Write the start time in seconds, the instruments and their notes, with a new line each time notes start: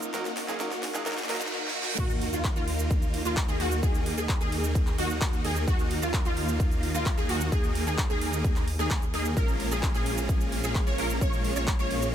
Already playing: grand piano F#3 A#3 D#4 A#4, supersaw synth A#3 D#4 F4, riser
0.02 shaker
0.13 grand piano F#3 A#3 D#4 A#4, supersaw synth A#3 D#4 F#4, snare, closed hi-hat, shaker
0.25 snare, closed hi-hat, shaker
0.37 snare, open hi-hat
0.48 grand piano F#3 A#3 D#4 G#4, supersaw synth A#3 D#4 F4, snare, shaker
0.59 grand piano F#3 A#3 D#4 A#4, supersaw synth A#3 D#4 F#4, snare, closed hi-hat, shaker
0.71 snare, closed hi-hat, shaker
0.83 snare, open hi-hat
0.94 grand piano F#3 A#3 D#4 G#4, supersaw synth A#3 D#4 F4, snare, closed hi-hat, shaker
1.06 grand piano F#3 A#3 D#4 A#4, supersaw synth A#3 D#4 F#4, snare, closed hi-hat, reverse cymbal, shaker
1.12 snare
1.18 snare, closed hi-hat, shaker
1.23 snare
1.29 grand piano F#3 A#3 D#4 A#4, supersaw synth A#3 D#4 F#4, snare, open hi-hat
1.35 snare
1.41 snare, closed hi-hat, shaker
1.46 snare
1.52 supersaw synth A#3 D#4 F#4, snare
1.68 snare
1.75 supersaw synth A#3 D#4 F#4
1.83 snare
1.98 detuned saw bass D#2, supersaw synth A#3 D#4 F#4, synth pluck F#4, kick, closed hi-hat, crash, sub drop, shaker
2.10 closed hi-hat, shaker
2.21 open hi-hat
2.33 detuned saw bass D#2, supersaw synth A#3 D#4 F4, synth pluck F4, closed hi-hat, shaker
2.44 kick, clap, closed hi-hat, shaker
2.56 detuned saw bass D#2, supersaw synth A#3 D#4 F4, synth pluck F4, closed hi-hat, shaker
2.68 open hi-hat
2.79 closed hi-hat, shaker
2.91 kick, closed hi-hat, shaker
3.02 closed hi-hat, shaker
3.14 open hi-hat
3.25 detuned saw bass D#2, supersaw synth A#3 D#4 F4, synth pluck F4, shaker
3.37 kick, clap, closed hi-hat, shaker
3.48 detuned saw bass D#2, supersaw synth A#3 D#4 G#4, synth pluck G#4, closed hi-hat, shaker
3.60 detuned saw bass D#2, supersaw synth A#3 D#4 F#4, synth pluck F#4, open hi-hat
3.72 closed hi-hat, shaker
3.83 detuned saw bass D#2, supersaw synth A#3 D#4 G#4, synth pluck G#4, kick, closed hi-hat, shaker
3.95 closed hi-hat, shaker
4.06 open hi-hat
4.18 detuned saw bass D#2, supersaw synth A#3 D#4 G#4, synth pluck G#4, shaker
4.29 kick, clap, closed hi-hat, shaker
4.41 detuned saw bass D#2, supersaw synth A#3 D#4 G#4, synth pluck G#4, closed hi-hat, shaker
4.52 open hi-hat
4.64 shaker
4.75 kick, closed hi-hat, shaker
4.87 clap, closed hi-hat, shaker
4.98 detuned saw bass D#2, supersaw synth A#3 D#4 F#4, synth pluck F#4, open hi-hat
5.10 closed hi-hat, shaker
5.21 kick, clap, closed hi-hat, shaker
5.33 closed hi-hat, shaker
5.44 detuned saw bass D#2, supersaw synth A#3 D#4 G#4, synth pluck G#4, open hi-hat
5.56 closed hi-hat, shaker
5.68 detuned saw bass D#2, supersaw synth A#3 D#4 F#4, synth pluck F#4, kick, closed hi-hat, shaker
5.79 closed hi-hat, shaker
5.91 open hi-hat
6.02 detuned saw bass D#2, supersaw synth A#3 D#4 F4, synth pluck F4, closed hi-hat, shaker
6.14 kick, clap, closed hi-hat, shaker
6.25 detuned saw bass D#2, supersaw synth A#3 D#4 F4, synth pluck F4, closed hi-hat, shaker
6.37 open hi-hat
6.48 closed hi-hat, shaker
6.60 kick, closed hi-hat, shaker
6.72 closed hi-hat, shaker
6.83 open hi-hat
6.94 detuned saw bass D#2, supersaw synth A#3 D#4 F4, synth pluck F4, closed hi-hat, shaker
7.06 kick, clap, closed hi-hat, shaker
7.18 detuned saw bass D#2, supersaw synth A#3 D#4 G#4, synth pluck G#4, closed hi-hat, shaker
7.29 detuned saw bass D#2, supersaw synth A#3 D#4 F#4, synth pluck F#4, open hi-hat
7.41 shaker
7.52 detuned saw bass D#2, supersaw synth A#3 D#4 G#4, synth pluck G#4, kick, closed hi-hat, shaker
7.64 closed hi-hat, shaker
7.75 open hi-hat
7.87 detuned saw bass D#2, supersaw synth A#3 D#4 G#4, synth pluck G#4, shaker
7.98 kick, clap, closed hi-hat, shaker
8.10 detuned saw bass D#2, supersaw synth A#3 D#4 G#4, synth pluck G#4, closed hi-hat, shaker
8.21 open hi-hat
8.33 closed hi-hat, shaker
8.44 kick, closed hi-hat, shaker
8.56 clap, closed hi-hat, shaker
8.68 open hi-hat
8.79 detuned saw bass D#2, supersaw synth A#3 D#4 G#4, synth pluck G#4, closed hi-hat, shaker
8.91 kick, clap, closed hi-hat, shaker
9.02 closed hi-hat, shaker
9.14 detuned saw bass D#2, supersaw synth A#3 D#4 G#4, synth pluck G#4, open hi-hat
9.25 closed hi-hat, shaker
9.37 detuned saw bass A#1, supersaw synth G#3 A#3 C#4 F4 A#4, synth pluck A#4, kick, closed hi-hat, shaker
9.48 closed hi-hat, shaker
9.60 open hi-hat
9.71 detuned saw bass A#1, supersaw synth G#3 A#3 C#4 F4 G#4, synth pluck G#4, shaker
9.83 kick, clap, closed hi-hat, shaker
9.94 detuned saw bass A#1, supersaw synth G#3 A#3 C#4 F4 G#4, synth pluck G#4, closed hi-hat, shaker
10.06 open hi-hat
10.18 closed hi-hat, shaker
10.29 kick, closed hi-hat, shaker
10.41 closed hi-hat, shaker
10.52 open hi-hat
10.64 detuned saw bass A#1, supersaw synth G#3 A#3 C#4 F4 G#4, synth pluck G#4, shaker
10.75 kick, clap, closed hi-hat, shaker
10.87 detuned saw bass A#1, supersaw synth G#3 A#3 C#4 F4 C#5, synth pluck C#5, closed hi-hat, shaker
10.98 detuned saw bass A#1, supersaw synth G#3 A#3 C#4 F4 A#4, synth pluck A#4, open hi-hat
11.10 closed hi-hat, shaker
11.21 detuned saw bass A#1, supersaw synth G#3 A#3 C#4 F4 C#5, synth pluck C#5, kick, closed hi-hat, shaker
11.33 closed hi-hat, shaker
11.45 open hi-hat
11.56 detuned saw bass A#1, supersaw synth G#3 A#3 C#4 F4 C#5, synth pluck C#5, closed hi-hat, shaker
11.67 kick, clap, closed hi-hat, shaker
11.79 detuned saw bass A#1, supersaw synth G#3 A#3 C#4 F4 C#5, synth pluck C#5, closed hi-hat, shaker
11.91 open hi-hat
12.02 closed hi-hat, shaker